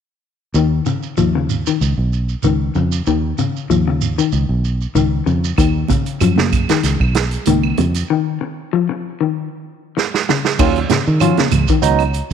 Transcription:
0.54 fingered electric bass D#2, clean electric guitar D#3, shekere
0.86 clean electric guitar C#3, shekere
1.03 shekere
1.17 fingered electric bass D#2, clean electric guitar F3, shekere
1.35 clean electric guitar C#3
1.49 shekere
1.66 clean electric guitar D#3, shekere
1.81 fingered electric bass C#2, shekere
1.98 fingered electric bass B1
2.13 shekere
2.29 shekere
2.43 fingered electric bass C#2, clean electric guitar D#3, shekere
2.75 fingered electric bass F2, clean electric guitar C#3, shekere
2.92 shekere
3.06 fingered electric bass D#2, clean electric guitar D#3, shekere
3.38 clean electric guitar C#3, shekere
3.56 shekere
3.70 fingered electric bass D#2, clean electric guitar F3, shekere
3.88 clean electric guitar C#3
4.01 shekere
4.18 clean electric guitar D#3, shekere
4.32 fingered electric bass C#2, shekere
4.49 fingered electric bass B1
4.65 shekere
4.81 shekere
4.95 fingered electric bass C#2, clean electric guitar D#3, shekere
5.26 fingered electric bass F2, clean electric guitar C#3, shekere
5.44 shekere
5.58 fingered electric bass D#2, clean electric guitar D#3, kick, closed hi-hat, high conga, claves, shekere
5.88 clean electric guitar C#3, kick, closed hi-hat, high conga, shekere
6.06 closed hi-hat, shekere
6.20 fingered electric bass F#2, clean electric guitar F3, closed hi-hat, high conga, claves, shekere
6.36 clean electric guitar C#3, snare, high conga
6.52 kick, closed hi-hat, claves, shekere
6.69 clean electric guitar D#3, snare, closed hi-hat, shekere
6.82 fingered electric bass C#2, snare, closed hi-hat, high conga, shekere
7.00 fingered electric bass B1, kick, claves
7.15 snare, closed hi-hat, shekere
7.31 closed hi-hat, shekere
7.45 fingered electric bass C#2, clean electric guitar D#3, closed hi-hat, high conga, shekere
7.63 claves
7.77 fingered electric bass F2, clean electric guitar C#3, closed hi-hat, high conga, shekere
7.94 closed hi-hat, shekere
8.10 clean electric guitar D#3
8.41 muted clean electric guitar stroke
8.73 clean electric guitar F3
8.89 muted clean electric guitar stroke
9.21 clean electric guitar D#3
9.97 muted clean electric guitar stroke, snare
10.14 snare
10.29 clean electric guitar C#3, snare
10.45 snare
10.59 fingered electric bass D#2, clean electric guitar D#3, tine electric piano F#3 C#4 F4, kick, crash, high conga, claves, shekere
10.76 closed hi-hat
10.90 clean electric guitar C#3, snare, closed hi-hat, high conga, shekere
11.07 fingered electric bass D#3, shekere
11.20 clean electric guitar F3, tine electric piano F#3 C#4 F4, closed hi-hat, high conga, claves, shekere
11.37 clean electric guitar C#3, snare, closed hi-hat, high conga
11.51 fingered electric bass C#2, closed hi-hat, low conga, claves, shekere
11.68 clean electric guitar D#3, kick, closed hi-hat, shekere
11.82 fingered electric bass C#2, tine electric piano F#3 B3 D#4, closed hi-hat, shekere
11.99 closed hi-hat, claves
12.13 closed hi-hat, shekere

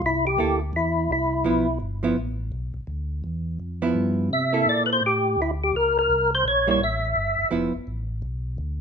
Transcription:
0.02 tonewheel organ C2
0.06 tonewheel organ E4
0.27 tonewheel organ G4
0.37 tonewheel organ D2, hollow-body jazz guitar A#3 E4 A4
0.73 tonewheel organ E2 E4
1.09 tonewheel organ C2 E4
1.44 tonewheel organ B1, hollow-body jazz guitar F3 B3 E4
1.80 tonewheel organ G1
2.03 hollow-body jazz guitar F3 B3 E4
2.16 tonewheel organ A1
2.52 tonewheel organ B1
2.74 tonewheel organ B1
2.87 tonewheel organ D2
3.24 tonewheel organ E2
3.60 tonewheel organ F2
3.82 hollow-body jazz guitar F3 B3 E4
3.95 tonewheel organ G2
4.30 tonewheel organ C3 E5
4.53 hollow-body jazz guitar A#3 E4 A4
4.66 tonewheel organ A#2 D5
4.86 tonewheel organ B4
4.93 tonewheel organ C5
5.01 tonewheel organ A2
5.06 tonewheel organ G4
5.37 tonewheel organ D2
5.42 tonewheel organ E4
5.64 tonewheel organ G4
5.73 tonewheel organ C#2 A#4
5.99 tonewheel organ A#4
6.09 tonewheel organ C2
6.35 tonewheel organ C5
6.44 tonewheel organ A#1 C#5
6.67 hollow-body jazz guitar G3 A#3 E4, tonewheel organ C#5
6.80 tonewheel organ A1 E5
7.16 tonewheel organ G1
7.39 tonewheel organ G1
7.51 tonewheel organ F1, hollow-body jazz guitar F3 B3 E4
7.74 tonewheel organ F1
7.87 tonewheel organ A1
8.22 tonewheel organ B1
8.58 tonewheel organ D2

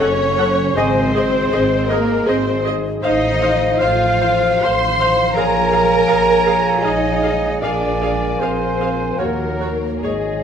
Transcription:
Already playing: harp F#2 C#3 C#4 F#4 A4, cello section C#4, french horn section A4 C#5, oboe C#5
0.00 double bass section F#1, viola section A4, violin section C#5
0.24 harp C#3
0.38 viola section A4 F#5
0.75 double bass section G#1, harp G#2, cello section C4, viola section G#4 D#5, french horn section G#4 D#5, oboe C5, violin section C5, clarinet D#5, flute G#5
1.02 harp D#3
1.15 viola section G#4 D#5
1.28 harp G#3
1.52 double bass section G#1, viola section G#4 D#5
1.78 harp G#4
1.90 cello section A#3, viola section G#4 D#5, oboe A#4, violin section A#4
2.02 harp D#4
2.27 double bass section G#1, harp G#3, cello section C4, viola section G#4 D#5, violin section C5, oboe C5
2.52 harp D#3
2.66 viola section G#4 D#5
2.78 harp G#3
3.03 double bass section A1, harp A2, cello section D#4, clarinet C5, viola section C5 F5, french horn section C5 F5, oboe D#5, violin section D#5, flute F5
3.28 harp D#3
3.42 viola section C5 F5
3.54 harp F3
3.79 double bass section A1, harp F4, cello section F4, clarinet C5, viola section C5 F5, oboe F5, violin section F5, flute F5
4.06 harp C5
4.21 viola section C5 F5
4.35 harp F4
4.62 double bass section A1, harp F3, cello section C5, clarinet C5, viola section C5 F5, flute F5, violin section C6, oboe C6
4.88 harp D#3
5.00 viola section C5 F5
5.11 harp F3
5.34 double bass section A#1, harp A#2, french horn section G#4, viola section G#4 F5, cello section A#4, clarinet C#5, flute G#5, violin section A#5, oboe A#5
5.59 harp F3
5.72 viola section G#4 F5
5.83 harp G#3
6.08 double bass section A#1, harp F4, viola section G#4 F5
6.46 viola section G#4 F5
6.58 harp F4
6.83 double bass section A#1, harp G#3, cello section D#4, viola section G#4 F5, violin section D#5, oboe D#5
7.10 harp F3
7.23 viola section G#4 F5
7.35 harp G#3
7.61 double bass section A#1, harp A#2, cello section D4, viola section G#4 F5, clarinet A#4, violin section D5, oboe D5, french horn section F5, flute G#5
7.88 harp F3
8.02 viola section G#4 F5
8.14 harp G#3
8.40 double bass section A#1, cello section C4, harp F4, viola section G#4 F5, oboe C5, violin section C5
8.80 viola section G#4 F5
8.92 harp F4
9.17 double bass section D#2, harp D#3, cello section A#3, french horn section F#4 C#5, viola section F#4 C#5, violin section A#4, oboe A#4, clarinet C#5, flute F#5
9.45 harp D#4
9.60 viola section F#4 C#5
9.72 harp D#4 C#5
10.02 double bass section G#1, harp G#2, cello section G#3, violin section G#4, french horn section G#4, viola section G#4 C#5, oboe G#4, clarinet C#5, flute D#5
10.33 harp D#3

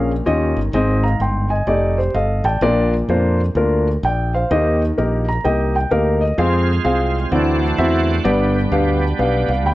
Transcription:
Already playing: fingered electric bass A#1, grand piano A#2 C#4 G#4 A#4 F5
0.26 fingered electric bass D#2, grand piano D#3 C#4 F4 G4 D#5
0.56 fingered electric bass G1
0.73 fingered electric bass G#1, grand piano G#2 C4 D#4 G#4 D#5
1.03 grand piano F5 A#5
1.20 fingered electric bass G1, grand piano G5 C6
1.50 grand piano D#5 G#5
1.67 fingered electric bass F1, grand piano A3 D#4 G4 D5
1.98 grand piano G4 C5
2.14 fingered electric bass G1, grand piano A4 D#5 F5
2.44 fingered electric bass A1, grand piano D5 G5 A5
2.61 fingered electric bass A#1, grand piano A#2 A#3 D4 F4 D5
3.08 fingered electric bass F2, grand piano A#3 D4 F4 C5
3.55 fingered electric bass D2, grand piano A#3 D4 F4 A#4
4.03 fingered electric bass A#1, grand piano D5 G5
4.34 grand piano C5 F5
4.51 fingered electric bass D#2, grand piano D#3 A#3 D#4 G4 D#5
4.98 fingered electric bass A#1, grand piano A#3 D#4 G4 A#4
5.28 grand piano A#5
5.44 fingered electric bass C2, grand piano A#3 D#4 G4 D#5 G5
5.76 grand piano G5
5.91 fingered electric bass D2, grand piano A#3 D#4 G4 A#4 F5
6.21 grand piano D#5
6.38 fingered electric bass F2, tonewheel organ G#3 C4 F4, grand piano C4 F4 G#4 F5
6.84 fingered electric bass C2, grand piano C4 F4 G#4 F5
7.32 fingered electric bass D2, grand piano D3 C4 E4 F#4 D5, tonewheel organ E3 A3 D4 F#4
7.78 fingered electric bass E2, grand piano C4 E4 F#4 E5
8.24 fingered electric bass G1, grand piano G2 B3 D4 G4 D5, tonewheel organ G3 B3
8.72 fingered electric bass D2, grand piano B3 D4 G4 F5
9.19 fingered electric bass B1, grand piano B3 D4 G4 F5
9.48 fingered electric bass C2, grand piano F5
9.65 fingered electric bass D2, grand piano F5 G5 B5

